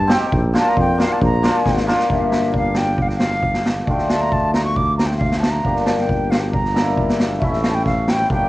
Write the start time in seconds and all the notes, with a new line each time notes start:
Already playing: G2 A5
0.07 C4 D#4 G4, snare
0.13 G5
0.21 G5, snare
0.32 A#1, kick
0.53 A#3 D4 F4, snare
0.58 A5
0.69 A#5
0.77 F2 G5, kick
0.98 A#3 D4 F4, snare
1.03 F5
1.13 A5
1.21 A#1 A#5, kick
1.43 A#3 D4 F4, snare
1.66 G#1, kick, snare
1.77 snare
1.87 A#3 D4 F4, snare
2.00 snare
2.08 G1 A#3 D4 G4, kick
2.13 E5
2.20 F5
2.25 E5
2.32 snare
2.42 snare
2.54 F5, kick
2.75 G5, snare
2.98 kick
3.02 F5
3.09 G5, snare
3.17 F5, snare
3.43 kick
3.54 snare
3.65 snare
3.86 D2 A3 D4 F4 G5, kick
3.98 snare
4.09 A5, snare
4.21 A#5
4.32 A5, kick
4.54 A#5, snare
4.65 C#6
4.76 D6, kick
4.97 A#5, snare
5.07 G5
5.11 snare
5.17 F5, kick
5.32 snare
5.39 A5, snare
5.51 A#5
5.63 G1 A#3 D4 G4, kick
5.76 snare
5.86 A5, snare
5.97 G5, snare
6.09 kick
6.30 F5, snare
6.40 G5
6.52 A#5, kick
6.65 snare
6.74 A#3 D4 E4, snare
6.97 kick
7.09 snare
7.20 snare
7.38 A1 A3 C#4 E5, kick
7.44 E4
7.53 snare
7.62 F5, snare
7.71 G5 A5
7.86 F5, kick, snare
8.08 G5, snare
8.30 G1 A#3 D4 G4 G5, kick